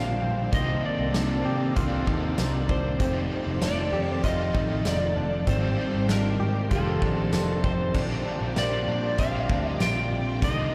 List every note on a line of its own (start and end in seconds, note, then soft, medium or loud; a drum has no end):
0.00 0.18 A#1 loud
0.00 0.51 A#2 medium
0.00 0.51 D3 medium
0.00 0.52 G3 medium
0.00 2.96 A#3 medium
0.00 0.54 C4 medium
0.00 0.21 D4 medium
0.00 0.55 F4 medium
0.00 0.50 G4 medium
0.00 0.35 C5 medium
0.00 0.49 C5 medium
0.00 0.50 D5 medium
0.00 0.55 F5 loud
0.22 0.49 A#1 loud
0.22 0.51 C4 medium
0.52 0.80 C2 loud
0.52 1.12 C3 medium
0.52 2.97 C3 medium
0.52 2.97 D#3 medium
0.52 1.14 D#3 medium
0.52 1.15 A#3 medium
0.52 2.97 C4 medium
0.52 1.14 C4 medium
0.52 1.28 A4 medium
0.52 0.85 D#5 medium
0.52 kick loud
0.52 closed hi-hat medium
0.85 2.04 D5 medium
0.99 1.13 C2 medium
1.13 1.42 C2 medium
1.13 1.72 C3 medium
1.13 1.77 D#3 medium
1.13 1.77 A#3 medium
1.13 1.45 D4 medium
1.13 snare loud
1.13 closed hi-hat medium
1.13 tambourine medium
1.18 1.78 D4 medium
1.45 1.73 C3 medium
1.45 1.76 G4 medium
1.45 2.21 A4 medium
1.67 2.40 C5 medium
1.74 2.04 C2 loud
1.74 2.98 C3 medium
1.74 3.00 D#3 loud
1.74 2.07 F4 medium
1.74 kick loud
1.74 closed hi-hat medium
1.80 3.01 A#3 medium
1.80 3.02 D4 loud
1.87 2.57 D5 medium
2.07 2.34 D#2 medium
2.07 2.37 D#4 medium
2.07 kick loud
2.38 2.66 C2 loud
2.38 2.68 D#4 medium
2.38 snare loud
2.38 closed hi-hat medium
2.38 tambourine medium
2.69 2.96 C2 loud
2.69 3.00 D4 medium
2.69 3.65 C5 medium
2.69 kick loud
2.98 3.27 F1 loud
2.98 3.61 F2 medium
2.98 3.59 C3 medium
2.98 7.91 D#3 medium
2.98 3.62 D#3 medium
2.98 5.45 F3 medium
2.98 3.62 A3 medium
2.98 3.61 C4 medium
2.98 5.45 C4 medium
2.98 3.65 D#4 loud
2.98 5.45 A4 medium
2.98 kick loud
2.98 closed hi-hat medium
3.46 3.60 F1 loud
3.60 3.89 F1 loud
3.60 4.23 C3 medium
3.60 4.24 D#3 medium
3.60 4.25 A3 medium
3.60 3.93 D4 medium
3.60 4.07 D5 loud
3.60 snare loud
3.60 closed hi-hat medium
3.60 tambourine medium
3.66 4.29 D#4 medium
3.92 4.20 F2 loud
3.92 4.23 G4 medium
4.07 4.20 C5 loud
4.21 4.51 F1 loud
4.21 5.46 F2 medium
4.21 5.47 C3 medium
4.21 4.55 F4 medium
4.21 4.87 D#5 loud
4.21 kick medium
4.21 closed hi-hat medium
4.26 5.48 D#3 medium
4.26 5.49 A3 medium
4.30 5.50 D#4 medium
4.54 4.82 A1 medium
4.54 4.84 D#4 medium
4.54 5.31 F4 medium
4.54 kick loud
4.75 5.48 A4 medium
4.85 5.13 F1 loud
4.85 5.16 D#4 medium
4.85 5.44 D5 loud
4.85 snare loud
4.85 closed hi-hat medium
4.85 tambourine medium
5.16 5.44 F1 loud
5.16 5.47 D4 medium
5.46 5.75 G#1 loud
5.46 5.78 G#2 medium
5.46 5.78 D#3 medium
5.46 6.70 G3 medium
5.46 5.79 G3 medium
5.46 6.08 C4 medium
5.46 5.78 C4 medium
5.46 6.70 G4 medium
5.46 6.70 C5 medium
5.46 6.12 C5 loud
5.46 kick loud
5.46 closed hi-hat medium
5.51 5.75 D#4 medium
5.77 6.75 C4 soft
5.77 6.70 D#4 soft
5.82 6.73 G3 soft
5.95 6.08 G#1 medium
6.09 6.37 G#1 medium
6.09 6.40 D4 medium
6.09 6.85 G4 medium
6.09 6.73 A#4 medium
6.09 snare loud
6.09 closed hi-hat medium
6.09 tambourine medium
6.29 7.03 A#3 medium
6.40 6.67 G#2 loud
6.40 6.70 G4 medium
6.69 6.98 F1 loud
6.69 7.93 F2 medium
6.69 7.94 C3 medium
6.69 7.93 F3 medium
6.69 7.93 C4 medium
6.69 7.02 F4 medium
6.69 7.93 A4 medium
6.69 7.47 A4 medium
6.69 kick loud
6.69 closed hi-hat medium
6.73 7.95 D#3 medium
6.73 7.96 A3 medium
6.73 7.61 A4 medium
6.77 7.96 D#4 medium
6.91 7.64 C5 medium
7.02 7.29 A1 medium
7.02 7.31 D4 medium
7.02 kick loud
7.32 7.60 F1 loud
7.32 7.63 D4 medium
7.32 snare loud
7.32 closed hi-hat medium
7.32 tambourine medium
7.64 7.91 F1 loud
7.64 7.94 C4 medium
7.64 8.58 C5 medium
7.64 kick medium
7.93 8.22 A#1 loud
7.93 8.56 A#2 medium
7.93 8.60 D3 medium
7.93 8.53 F3 medium
7.93 10.75 C4 medium
7.93 8.57 C4 medium
7.93 8.24 D4 medium
7.93 8.58 D4 medium
7.93 10.40 G4 medium
7.93 8.60 G4 medium
7.93 10.75 A#4 medium
7.93 10.40 D5 medium
7.93 kick loud
7.93 crash medium
8.26 8.57 D4 medium
8.26 9.02 C5 medium
8.41 8.55 A#1 loud
8.55 8.84 A#1 loud
8.55 9.17 F3 medium
8.55 8.87 A#3 medium
8.55 9.21 C4 medium
8.55 9.21 D5 loud
8.55 snare loud
8.55 closed hi-hat medium
8.55 tambourine medium
8.59 9.22 D4 medium
8.59 9.23 G4 medium
8.88 9.15 A#2 medium
8.88 9.18 D4 medium
9.16 9.46 A#1 loud
9.16 10.41 A#2 medium
9.16 10.40 D3 medium
9.16 9.49 C4 medium
9.16 9.67 F5 loud
9.16 kick medium
9.16 closed hi-hat medium
9.20 10.42 F3 medium
9.20 10.43 C4 medium
9.20 10.45 D4 medium
9.24 10.75 G4 medium
9.49 9.77 D2 medium
9.49 9.80 D4 medium
9.49 kick loud
9.67 9.81 D#5 loud
9.80 10.08 A#1 loud
9.80 10.42 F4 medium
9.80 10.45 G5 loud
9.80 snare loud
9.80 closed hi-hat medium
9.80 tambourine medium
10.11 10.38 A#1 medium
10.41 10.70 C2 loud
10.41 10.75 C3 medium
10.41 10.72 D3 medium
10.41 10.75 D#3 medium
10.41 10.75 A#3 medium
10.41 10.75 C5 medium
10.41 10.75 D#5 loud
10.41 kick loud
10.41 closed hi-hat medium